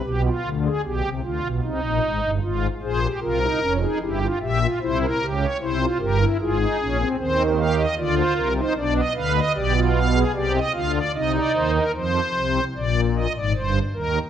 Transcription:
<<
  \new Staff \with { instrumentName = "Pipe organ" } { \time 3/4 \key f \minor \tempo 4 = 76 << { r2. | r8 c''8 bes'8. aes'16 g'8 e''8 | c''16 bes'8 des''16 c''8 bes'8 aes'4 | c''8 f''16 ees''16 d''16 c''16 bes'16 c''16 d''16 ees''16 f''16 ees''16 |
d''8 f''8 d''16 ees''16 f''16 d''16 ees''16 d''16 c''16 bes'16 | c''4 d''8 ees''16 d''16 c''8 bes'8 | } \\ { g'16 f'8 aes'16 g'8 f'8 ees'4 | f'8 aes'16 g'16 f'16 ees'16 des'16 ees'16 e'16 f'16 g'16 f'16 | e'8 g'8 e'16 f'16 g'16 e'16 f'16 ees'16 des'16 c'16 | c'8 g'8 f'8. ees'16 d'8 b'8 |
g'16 f'8 aes'16 g'8 f'8 ees'4 | r2. | } >> }
  \new Staff \with { instrumentName = "Pipe organ" } { \clef bass \time 3/4 \key f \minor <b,, b,>8 <d, d>8 <b,, b,>16 <c, c>16 <d, d>16 <b,, b,>16 <c, c>16 <bes,, bes,>16 <aes,, aes,>16 <g,, g,>16 | <aes,, aes,>8 <bes,, bes,>8 <c, c>8 <f,, f,>8 <g,, g,>8 <bes,, bes,>8 | <c, c>8 <des, des>8 <c, c>8 <g,, g,>8 <aes,, aes,>8 <bes,, bes,>8 | <ees, ees>4 <d, d>8 <c, c>8 <b,, b,>8 <d, d>8 |
<b,, b,>4 <c, c>8 <d, d>8 <c, c>8 <ees, ees>8 | <f, f>8 <c, c>8 <bes,, bes,>8. <aes,, aes,>16 <g,, g,>8 <ees, ees>8 | }
>>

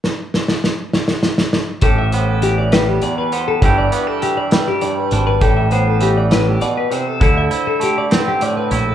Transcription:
<<
  \new Staff \with { instrumentName = "Clean electric guitar" } { \time 6/8 \key a \minor \tempo 4. = 67 r2. | a'16 e''16 c''16 a'16 g'16 d''16 b'16 g'16 d''16 b'16 c''16 a'16 | g'16 d''16 b'16 a'16 g'16 d''16 b'16 g'16 d''16 b'16 c''16 b'16 | a'16 e''16 c''16 a'16 g'16 d''16 b'16 g'16 d''16 b'16 c''16 a'16 |
a'16 e''16 c''16 a'16 g'16 d''16 b'16 g'16 d''16 b'16 c''16 a'16 | }
  \new Staff \with { instrumentName = "Clean electric guitar" } { \clef bass \time 6/8 \key a \minor << { r2. | g'8 b4 g4 b8 | <e g d' g'>8 b16 d'8. g4 d'8 | g'8 b2~ b8 |
e'8 e'4 c'4 e'8 | } \\ { r2. | a,4 e4 e,4 | g,4 e4 g,4 | a,4 e8 a,8 b,8 c8 |
d4 a4 a,4 | } >> }
  \new Staff \with { instrumentName = "Picked electric bass" } { \clef bass \time 6/8 \key a \minor r2. | a,,2 r4 | g,,8 r2 gis,,8 | a,,2 r4 |
d,8 r2 bes,,8 | }
  \new DrumStaff \with { instrumentName = "Drums" } \drummode { \time 6/8 sn8 sn16 sn16 sn8 sn16 sn16 sn16 sn16 sn8 | <hh bd>8 hh8 hh8 <hh sn>8 hh8 hh8 | <hh bd>8 hh8 hh8 <hh sn>8 hh8 hh8 | <hh bd>8 hh8 hh8 <hh sn>8 hh8 hh8 |
<hh bd>8 hh8 hh8 <hh sn>8 hh8 hh8 | }
>>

